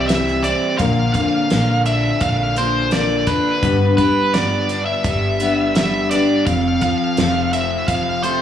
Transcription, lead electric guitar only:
0.00 0.07 D5 medium
0.08 0.43 E5 medium
0.44 0.77 D5 medium
0.78 1.12 F5 medium
1.13 1.81 F5 medium
1.86 2.21 E5 medium
2.22 2.55 F5 medium
2.58 2.94 C5 medium
2.92 3.29 D5 medium
3.27 3.96 B4 medium
3.97 4.34 B4 medium
4.33 4.85 D5 medium
4.85 5.75 E5 medium
5.76 6.09 E5 medium
6.11 6.46 D5 medium
6.46 6.82 F5 medium
6.83 7.53 F5 loud
7.53 7.88 E5 medium
7.88 8.21 F5 medium
8.23 8.42 C5 medium

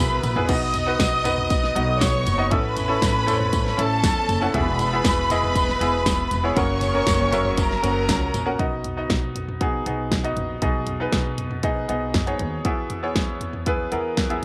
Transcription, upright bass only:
0.00 0.22 B1 loud
0.23 0.47 A#1 medium
0.49 0.96 B1 medium
1.00 1.72 B1 medium
1.76 2.23 B1 loud
2.27 2.50 F#1 medium
2.52 2.99 A1 medium
3.02 3.74 A1 medium
3.78 4.02 A1 medium
4.03 4.27 E2 loud
4.29 4.52 F#1 medium
4.54 5.01 E1 loud
5.05 5.77 E1 medium
5.81 6.28 E1 medium
6.31 6.55 E1 medium
6.57 7.04 F#1 medium
7.07 7.79 F#1 loud
7.84 8.07 F#1 medium
8.09 8.32 C#2 loud
8.34 8.58 A#1 medium
8.60 9.07 B1 medium
9.10 9.82 B1 medium
9.86 10.33 B1 medium
10.37 10.60 A#1 medium
10.62 11.09 B1 medium
11.12 11.85 B1 medium
11.89 12.13 B1 medium
12.14 12.38 F#2 medium
12.40 12.63 D#2 medium
12.65 13.12 E2 medium
13.15 13.88 E2 medium
13.92 14.39 E2 medium

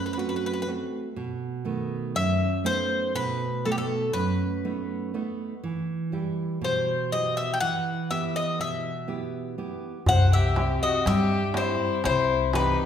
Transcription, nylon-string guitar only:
0.00 0.64 F#2 medium
0.17 0.66 A3 soft
0.17 0.66 C4 soft
0.17 0.67 F#4 medium
0.67 1.07 A3 soft
0.67 1.07 C4 soft
0.67 1.08 F#4 medium
1.16 2.13 B2 medium
1.65 2.45 D#3 soft
1.65 2.45 A3 soft
1.65 2.45 B3 soft
2.15 3.12 F#2 medium
2.64 3.44 A3 soft
2.64 3.44 B3 soft
2.64 3.45 D#4 medium
3.15 4.11 B2 medium
3.66 4.45 A3 soft
3.66 4.45 B3 soft
3.66 4.45 D#4 medium
4.14 5.10 F#2 medium
4.65 5.13 A3 soft
4.65 5.13 B3 soft
4.65 5.13 D#4 medium
5.14 5.54 A3 soft
5.14 5.54 B3 soft
5.14 5.54 D#4 medium
5.64 6.59 E3 medium
6.12 6.92 G3 soft
6.12 6.92 E4 soft
6.12 6.92 G4 medium
6.61 7.58 B2 medium
7.12 7.91 B3 soft
7.12 7.91 E4 soft
7.12 7.92 G4 soft
7.62 8.57 E3 medium
8.11 8.90 B3 soft
8.11 8.90 E4 soft
8.11 8.90 G4 medium
8.59 9.55 B2 medium
9.08 9.57 B3 soft
9.08 9.57 E4 soft
9.08 9.57 G4 soft
9.58 9.98 B3 soft
9.58 9.98 E4 soft
9.58 9.98 G4 medium
10.07 11.03 C3 medium
10.57 11.36 C4 soft
10.57 11.36 E4 soft
10.57 11.36 G4 medium
11.05 12.01 G3 medium
11.55 12.34 C4 soft
11.55 12.34 E4 soft
11.55 12.34 G4 medium
12.04 12.86 C3 medium
12.54 12.86 E3 soft
12.54 12.86 C4 medium
12.54 12.86 G4 medium

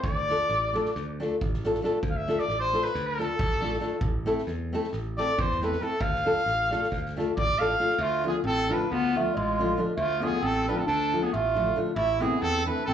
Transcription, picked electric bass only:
0.04 0.32 D2 medium
0.49 0.77 A1 medium
0.96 1.23 D2 medium
1.43 1.79 A1 medium
2.03 2.31 D2 medium
2.48 2.76 A1 medium
2.95 3.22 D2 loud
3.40 3.77 A1 medium
4.02 4.29 A1 medium
4.47 4.75 E2 medium
4.93 5.20 A1 medium
5.38 5.75 E2 medium
6.01 6.28 D2 loud
6.46 6.74 A1 medium
6.92 7.19 D2 medium
7.37 7.74 A1 loud
7.99 8.26 D2 loud
8.44 8.72 A1 medium
8.92 9.19 D2 medium
9.37 9.74 A1 loud
9.98 10.25 D2 loud
10.43 10.70 A1 medium
10.88 11.16 D2 medium
11.34 11.71 A1 loud
11.96 12.24 A1 loud
12.42 12.69 E2 medium
12.88 12.94 A1 medium

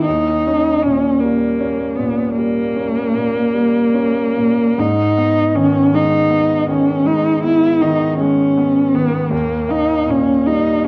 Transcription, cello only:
0.05 0.84 D#4 medium
0.82 1.22 C#4 soft
1.20 1.97 A#3 soft
1.96 2.35 B3 soft
2.36 4.80 A#3 medium
4.79 5.57 D#4 medium
5.55 5.96 C#4 medium
5.95 6.69 D#4 medium
6.69 7.08 C#4 soft
7.06 7.43 D#4 soft
7.43 7.83 E4 medium
7.81 8.19 D#4 soft
8.19 8.96 C#4 medium
8.95 9.31 B3 medium
9.32 9.72 A#3 medium
9.70 10.12 D#4 medium
10.10 10.48 C#4 soft
10.47 10.86 D#4 medium
10.84 10.88 C#4 soft

